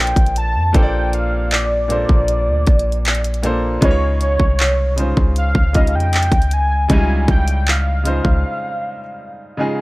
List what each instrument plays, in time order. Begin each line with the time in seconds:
Already playing: 808-style bass A#1, grand piano A#2 A#3 D4 A4 C5 D5, soft synth lead G5
0.07 closed hi-hat
0.16 808-style bass A#1, kick, closed hi-hat
0.26 closed hi-hat
0.36 soft synth lead A5, closed hi-hat
0.55 808-style bass F2
0.73 808-style bass A#1, grand piano A#2 A#3 D4 A4 C5, soft synth lead G5, kick, closed hi-hat
0.83 grand piano D5
1.13 soft synth lead F5, closed hi-hat
1.51 soft synth lead D5, clap, closed hi-hat
1.88 grand piano A#2 A#3 D4 A4 C5, closed hi-hat
2.09 808-style bass A#1, kick
2.28 closed hi-hat
2.47 808-style bass D2
2.67 808-style bass A#1, kick, closed hi-hat
2.79 closed hi-hat
2.92 closed hi-hat
3.05 clap, closed hi-hat
3.15 closed hi-hat
3.24 closed hi-hat
3.34 closed hi-hat
3.43 grand piano A#2 A#3 D4 A4 C5, closed hi-hat
3.81 808-style bass C#2, grand piano C#3 G#3 D#4 F4 B4, soft synth lead C#5, kick, closed hi-hat
3.91 grand piano C#5
4.21 soft synth lead C#5, closed hi-hat
4.40 808-style bass C2, kick
4.59 clap, closed hi-hat
4.96 grand piano C#3 G#3 D#4 F4 C5, closed hi-hat
5.17 808-style bass C#2, kick
5.36 soft synth lead F5, closed hi-hat
5.55 808-style bass C#2, kick
5.73 grand piano C#3 G#3 D#4 F4 D#5, kick, closed hi-hat
5.87 closed hi-hat
5.94 808-style bass F2, soft synth lead G5
6.00 closed hi-hat
6.13 clap, closed hi-hat
6.23 closed hi-hat
6.32 808-style bass C#2, kick, closed hi-hat
6.42 closed hi-hat
6.51 soft synth lead G#5, closed hi-hat
6.88 808-style bass C#2, grand piano C#3 G3 G#3 D#4 E4, soft synth lead G#5, kick, closed hi-hat
6.97 grand piano F4
7.28 808-style bass C#2, soft synth lead G5, kick, closed hi-hat
7.48 closed hi-hat
7.67 soft synth lead F5, clap, closed hi-hat
8.04 grand piano C#3 G#3 D#4 F4 C5, closed hi-hat
8.25 808-style bass C#2, kick
9.57 grand piano C#3 G#3 D#4 F4 G#4